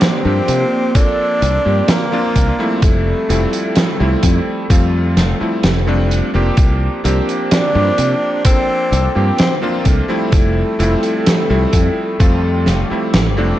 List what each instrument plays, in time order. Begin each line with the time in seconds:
Already playing: electric grand piano F3 A#3 C4 D4 G4, ambient pad A#3 D5 C6
0.01 tenor saxophone C4, snare, closed hi-hat
0.24 fretless electric bass G2, electric grand piano F3 A#3 C4 D4 G4
0.48 fretless electric bass C3, closed hi-hat
0.95 electric grand piano F3 A#3 C4 D4 A4, tenor saxophone D4, kick, closed hi-hat
1.42 fretless electric bass C2, closed hi-hat
1.65 fretless electric bass G2, electric grand piano F3 A#3 C4 D4 G4
1.88 tenor saxophone A#3, snare, closed hi-hat
2.12 electric grand piano F3 A#3 C4 D4 F4
2.36 fretless electric bass C2, kick, closed hi-hat
2.59 electric grand piano F3 G3 A3 C4 E4
2.82 fretless electric bass F1, tenor saxophone A3, ambient pad A4 G5 E6, kick, closed hi-hat
3.29 fretless electric bass F1, electric grand piano F3 G3 A3 C4 E4, closed hi-hat
3.53 closed hi-hat
3.75 snare, closed hi-hat
3.99 fretless electric bass C2, electric grand piano F3 G3 A3 C4 E4
4.23 fretless electric bass F2, kick, closed hi-hat
4.70 fretless electric bass F2, electric grand piano F3 G3 A3 C4 F4, kick, closed hi-hat
5.17 fretless electric bass F1, snare, closed hi-hat
5.40 electric grand piano F3 G3 A3 C4 E4, muted fretless electric bass stroke
5.63 fretless electric bass F1, snare, closed hi-hat
5.87 electric grand piano F3 G3 A3 C4 D4
6.11 closed hi-hat
6.34 fretless electric bass F1, electric grand piano F3 A#3 C4 D4 G4
6.57 fretless electric bass C2, ambient pad C5 G5 D6, kick, closed hi-hat
7.04 fretless electric bass C2, electric grand piano F3 A#3 C4 D4 G4, closed hi-hat
7.29 closed hi-hat
7.51 tenor saxophone D4, snare, closed hi-hat
7.74 fretless electric bass G2, electric grand piano F3 A#3 C4 D4 G4
7.98 fretless electric bass C3, closed hi-hat
8.44 electric grand piano F3 A#3 C4 D4 A4, tenor saxophone C4, kick, closed hi-hat
8.92 fretless electric bass C2, closed hi-hat
9.15 fretless electric bass G2, electric grand piano F3 A#3 C4 D4 G4
9.38 tenor saxophone C4, snare, closed hi-hat
9.62 electric grand piano F3 A#3 C4 D4 F4
9.79 tenor saxophone A#3
9.85 fretless electric bass C2, tenor saxophone A3, kick, closed hi-hat
10.08 electric grand piano F3 G3 A3 C4 E4
10.32 fretless electric bass F1, ambient pad A4 G5 E6, kick, closed hi-hat
10.79 fretless electric bass F1, electric grand piano F3 G3 A3 C4 E4, closed hi-hat
11.03 closed hi-hat
11.26 snare, closed hi-hat
11.49 fretless electric bass C2, electric grand piano F3 G3 A3 C4 E4
11.73 fretless electric bass F2, kick, closed hi-hat
12.19 fretless electric bass F2, electric grand piano F3 G3 A3 C4 F4, ambient pad D6, kick, closed hi-hat
12.66 fretless electric bass F1, snare, closed hi-hat
12.90 electric grand piano F3 G3 A3 C4 E4, muted fretless electric bass stroke
13.14 fretless electric bass A1, snare, closed hi-hat
13.37 fretless electric bass F1, electric grand piano F3 G3 A3 C4 D4